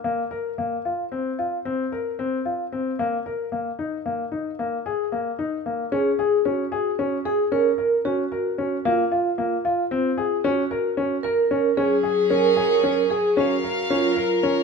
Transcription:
<<
  \new Staff \with { instrumentName = "Vibraphone" } { \time 11/8 \key aes \mixolydian \tempo 4 = 113 r1 r4. | r1 r4. | aes'4 ges'4. aes'8 bes'4 ges'4. | f'2. ges'4. bes'4 |
aes'4 bes'4. aes'8 ges'4 f'4. | }
  \new Staff \with { instrumentName = "String section" } { \time 11/8 \key aes \mixolydian r1 r4. | r1 r4. | r1 r4. | r1 r4. |
<ges des' aes'>2. <ges bes' f''>2~ <ges bes' f''>8 | }
  \new Staff \with { instrumentName = "Grand piano" } { \time 11/8 \key aes \mixolydian bes8 bes'8 bes8 f'8 c'8 f'8 c'8 bes'8 c'8 f'8 c'8 | bes8 bes'8 bes8 ees'8 bes8 ees'8 bes8 aes'8 bes8 ees'8 bes8 | des'8 aes'8 des'8 aes'8 des'8 aes'8 des'8 bes'8 des'8 bes'8 des'8 | bes8 f'8 bes8 f'8 c'8 aes'8 des'8 bes'8 des'8 bes'8 des'8 |
des'8 aes'8 des'8 aes'8 des'8 aes'8 des'8 bes'8 des'8 bes'8 des'8 | }
>>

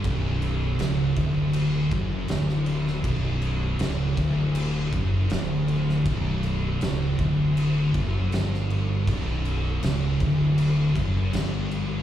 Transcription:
<<
  \new Staff \with { instrumentName = "Distorted electric guitar" } { \clef bass \time 4/4 \key b \minor \tempo 4 = 80 b,,4 cis,8 d,4 fis,8 d,4 | b,,4 cis,8 d,4 fis,8 d,4 | b,,4 cis,8 d,4 fis,8 g,4 | b,,4 cis,8 d,4 fis,8 g,4 | }
  \new Staff \with { instrumentName = "Distorted electric guitar" } { \clef bass \time 4/4 \key b \minor b,,4 cis,8 d,4 fis,8 d,4 | b,,4 cis,8 d,4 fis,8 d,4 | b,,4 cis,8 d,4 fis,8 g,4 | b,,4 cis,8 d,4 fis,8 g,4 | }
  \new Staff \with { instrumentName = "Distorted electric guitar" } { \clef bass \time 4/4 \key b \minor b,,4 cis,8 d,4 fis,8 d,4 | b,,4 cis,8 d,4 fis,8 d,4 | b,,4 cis,8 d,4 fis,8 g,4 | b,,4 cis,8 d,4 fis,8 g,4 | }
  \new Staff \with { instrumentName = "Fingered electric bass" } { \clef bass \time 4/4 \key b \minor b,,,4 cis,,8 d,,4 fis,,8 d,,4 | b,,,4 cis,,8 d,,4 fis,,8 d,,4 | b,,,4 cis,,8 d,,4 fis,,8 g,,4 | b,,,4 cis,,8 d,,4 fis,,8 g,,4 | }
  \new DrumStaff \with { instrumentName = "Drums" } \drummode { \time 4/4 <cymc bd>8 cymc8 <cymc sn>8 <cymc bd>8 cymc8 <cymc bd>8 <cymc sn>16 sn16 cymc16 sn16 | <cymc bd>8 cymc8 <cymc sn>8 <cymc bd>8 cymc8 <cymc bd>8 <cymc sn>8 cymc16 sn16 | <cymc bd>8 cymc8 <cymc sn>8 <cymc bd>8 cymc8 <cymc bd>8 <cymc sn>16 sn16 cymc8 | <cymc bd>8 cymc8 <cymc sn>8 <cymc bd>8 cymc8 <cymc bd>8 <cymc sn>8 cymc8 | }
>>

